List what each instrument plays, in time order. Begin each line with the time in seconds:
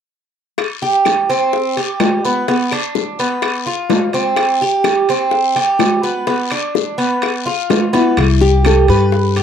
0.58 high bongo, high timbale, long guiro, claves
0.82 cuban tres G4, high bongo
1.05 high bongo, high timbale, low timbale, short guiro, claves
1.30 cuban tres C4, high timbale, short guiro
1.53 high bongo, long guiro
1.77 cuban tres G4, high bongo, high timbale
2.00 high bongo, low bongo, high timbale, low timbale, short guiro, claves
2.25 cuban tres B3, short guiro
2.48 cuban tres B3, high bongo, high timbale, long guiro
2.71 cuban tres D4, high bongo, high timbale, claves
2.95 high bongo, low timbale, short guiro
3.19 cuban tres B3, high timbale, short guiro
3.42 high bongo, high timbale, long guiro, claves
3.66 cuban tres F4, high bongo
3.90 high bongo, low bongo, high timbale, low timbale, short guiro
4.13 cuban tres C4, high timbale, short guiro
4.36 high bongo, high timbale, long guiro, claves
4.61 cuban tres G4, high bongo
4.84 high bongo, high timbale, low timbale, short guiro, claves
5.09 cuban tres C4, high timbale, short guiro
5.31 high bongo, long guiro
5.55 cuban tres G4, high bongo, high timbale
5.79 high bongo, low bongo, high timbale, low timbale, short guiro, claves
6.03 cuban tres B3, short guiro
6.27 cuban tres B3, high bongo, high timbale, long guiro
6.50 cuban tres D4, high bongo, high timbale, claves
6.75 high bongo, low timbale, short guiro
6.98 cuban tres B3, high timbale, short guiro
7.22 high bongo, high timbale, long guiro, claves
7.46 cuban tres F4, high bongo
7.70 nylon-string guitar F4, high bongo, high timbale, low timbale, short guiro
7.93 cuban tres B3, nylon-string guitar E4, low bongo, high timbale, short guiro
8.17 upright bass C2, high bongo, high timbale, long guiro, claves
8.41 cuban tres G4, nylon-string guitar G4, high bongo
8.65 nylon-string guitar A4, high bongo, high timbale, low timbale, short guiro, claves
8.88 upright bass G2, nylon-string guitar G4, cuban tres B4, high timbale, short guiro
9.12 high bongo, long guiro
9.36 cuban tres G4, high bongo, high timbale